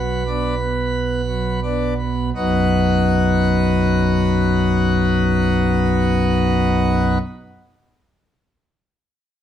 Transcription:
0.00 2.32 B1 medium
0.00 2.32 B2 medium
0.00 0.23 F#3 soft
0.00 1.60 B4 medium
0.27 0.55 B3 soft
0.27 0.55 D4 medium
0.60 1.21 B3 soft
1.27 1.60 F#3 medium
1.63 1.94 B3 soft
1.63 1.94 D4 soft
1.99 2.30 B3 soft
2.35 7.18 B1 medium
2.35 7.18 F#2 medium
2.35 7.18 F#3 medium
2.35 7.18 B3 medium
2.35 7.18 D#4 medium
2.35 7.18 F#4 medium

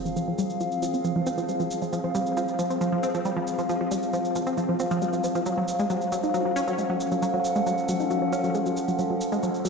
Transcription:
0.00 9.69 F3 medium
0.00 5.46 C4 medium
0.00 5.46 G#4 medium
0.00 5.46 F5 medium
0.00 sub drop medium
0.05 0.08 F3 medium
0.05 shaker soft
0.16 0.21 F3 medium
0.16 shaker soft
0.28 0.33 F3 medium
0.38 0.44 G3 medium
0.38 shaker medium
0.50 shaker soft
0.60 0.66 F3 medium
0.60 shaker soft
0.72 shaker soft
0.82 0.88 F3 medium
0.82 shaker medium
0.94 1.01 C4 medium
0.94 shaker soft
1.04 1.12 F3 medium
1.04 shaker soft
1.16 1.21 F3 medium
1.26 1.32 C4 loud
1.26 shaker medium
1.38 1.43 F3 medium
1.38 shaker soft
1.49 1.54 G3 medium
1.49 shaker soft
1.60 1.63 F3 medium
1.60 shaker soft
1.71 shaker medium
1.82 1.85 F3 medium
1.82 shaker soft
1.93 1.98 F3 medium
1.93 shaker soft
2.04 2.09 F3 medium
2.15 2.20 G3 loud
2.15 shaker medium
2.26 shaker soft
2.37 2.42 F3 medium
2.37 shaker soft
2.48 shaker soft
2.59 2.64 F3 medium
2.59 shaker medium
2.70 2.78 C4 medium
2.70 shaker soft
2.81 2.89 F3 medium
2.81 shaker soft
2.92 2.97 F3 medium
3.03 3.08 C4 medium
3.03 shaker medium
3.15 3.19 F3 medium
3.15 shaker soft
3.25 3.30 G3 medium
3.25 shaker soft
3.37 3.39 F3 medium
3.47 shaker medium
3.58 3.61 F3 medium
3.58 shaker soft
3.69 3.74 F3 medium
3.69 shaker soft
3.81 3.86 F3 medium
3.91 3.97 G3 loud
3.91 shaker medium
4.03 shaker soft
4.13 4.19 F3 medium
4.13 shaker soft
4.25 shaker soft
4.35 4.41 F3 medium
4.35 shaker medium
4.47 4.54 C4 medium
4.47 shaker soft
4.58 4.65 F3 medium
4.58 shaker soft
4.69 4.74 F3 medium
4.80 4.85 C4 medium
4.80 shaker medium
4.91 4.98 F3 loud
4.91 shaker soft
5.02 5.07 G3 medium
5.02 shaker soft
5.13 5.18 F3 medium
5.13 shaker soft
5.24 5.27 F3 medium
5.24 shaker medium
5.35 5.40 F3 loud
5.35 shaker soft
5.46 5.51 F#3 medium
5.46 9.69 C#4 medium
5.46 shaker soft
5.57 5.62 F#3 medium
5.57 9.69 F#5 medium
5.66 9.69 A4 medium
5.66 shaker medium
5.79 5.84 G#3 loud
5.79 shaker soft
5.90 5.95 F#3 medium
5.90 shaker soft
6.01 shaker soft
6.12 6.17 F#3 medium
6.12 shaker medium
6.23 6.31 D#4 medium
6.23 shaker soft
6.34 6.42 F#3 medium
6.34 shaker soft
6.45 6.50 F#3 medium
6.56 6.61 C#4 loud
6.56 shaker medium
6.67 6.72 F#3 medium
6.67 shaker soft
6.78 6.83 G#3 medium
6.78 shaker soft
6.90 6.92 F#3 medium
7.00 shaker medium
7.12 7.15 F#3 medium
7.12 shaker soft
7.22 7.27 F#3 medium
7.22 shaker soft
7.34 7.39 F#3 medium
7.44 shaker medium
7.56 7.61 G#3 loud
7.56 shaker soft
7.66 7.72 F#3 medium
7.66 shaker soft
7.78 shaker soft
7.88 7.94 F#3 medium
7.88 shaker medium
8.00 8.07 D#4 medium
8.00 shaker soft
8.11 8.18 F#3 medium
8.11 shaker soft
8.22 8.27 F#3 medium
8.33 8.38 C#4 medium
8.33 shaker medium
8.44 8.49 F#3 medium
8.44 shaker soft
8.55 8.60 G#3 medium
8.55 shaker soft
8.66 8.69 F#3 medium
8.66 shaker soft
8.77 shaker medium
8.88 8.91 F#3 medium
8.88 shaker soft
8.99 9.04 F#3 medium
8.99 riser medium
8.99 shaker soft
9.10 9.15 F#3 medium
9.21 shaker medium
9.32 9.37 G#3 loud
9.32 shaker soft
9.43 9.48 F#3 medium
9.43 shaker soft
9.54 shaker soft
9.65 9.69 F#3 medium
9.65 shaker medium

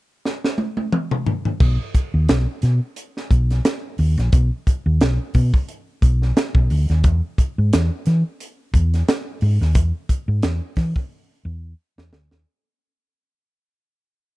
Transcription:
0.25 snare medium
0.44 snare medium
0.58 high tom medium
0.77 high tom medium
0.92 mid tom loud
1.11 mid tom medium
1.26 floor tom loud
1.45 floor tom medium
1.60 1.76 B1 loud
1.60 kick loud
1.60 crash medium
1.95 kick medium
1.95 closed hi-hat medium
2.14 2.26 D#2 medium
2.29 2.45 B1 loud
2.29 snare loud
2.29 closed hi-hat medium
2.62 2.79 B2 loud
2.62 snare soft
2.62 closed hi-hat medium
2.96 closed hi-hat medium
3.17 snare soft
3.31 3.59 B1 medium
3.31 kick medium
3.31 closed hi-hat medium
3.51 snare soft
3.51 closed hi-hat soft
3.65 snare loud
3.65 closed hi-hat loud
3.98 4.15 D#2 medium
3.98 open hi-hat medium
4.18 4.30 A#1 medium
4.18 snare soft
4.18 closed hi-hat medium
4.32 4.48 B1 loud
4.32 kick loud
4.32 closed hi-hat medium
4.67 kick medium
4.67 closed hi-hat medium
4.86 4.98 D#2 medium
5.01 5.17 B1 medium
5.01 snare loud
5.01 closed hi-hat medium
5.34 5.51 B2 loud
5.34 kick medium
5.34 open hi-hat medium
5.54 kick medium
5.69 closed hi-hat medium
6.02 6.30 B1 loud
6.02 kick medium
6.02 closed hi-hat medium
6.22 snare soft
6.37 snare loud
6.37 closed hi-hat medium
6.55 6.67 B1 medium
6.55 kick loud
6.70 6.86 D2 medium
6.70 open hi-hat medium
6.89 7.04 D#2 medium
6.89 snare soft
6.89 closed hi-hat soft
7.04 7.20 E2 loud
7.04 kick loud
7.04 closed hi-hat medium
7.38 kick medium
7.38 closed hi-hat medium
7.58 7.70 G#2 medium
7.73 7.89 E2 medium
7.73 snare loud
7.73 closed hi-hat loud
8.06 8.22 E3 loud
8.06 snare soft
8.06 closed hi-hat medium
8.40 closed hi-hat medium
8.73 9.01 E2 medium
8.73 kick medium
8.73 closed hi-hat medium
8.94 snare soft
8.94 closed hi-hat medium
9.08 snare loud
9.08 closed hi-hat medium
9.41 9.57 G#2 medium
9.41 open hi-hat medium
9.61 9.75 D#2 medium
9.61 snare soft
9.75 9.91 E2 loud
9.75 kick loud
9.75 closed hi-hat medium
10.09 kick medium
10.09 closed hi-hat medium
10.28 10.40 G#2 medium
10.43 10.59 E2 medium
10.43 snare loud
10.43 closed hi-hat medium
10.76 10.92 E3 medium
10.76 kick loud
10.76 snare soft
10.76 open hi-hat medium
10.96 kick medium
11.45 11.72 E2 medium
11.98 12.10 E2 medium
11.98 snare medium
12.12 12.28 D2 medium
12.12 snare loud
12.31 snare medium

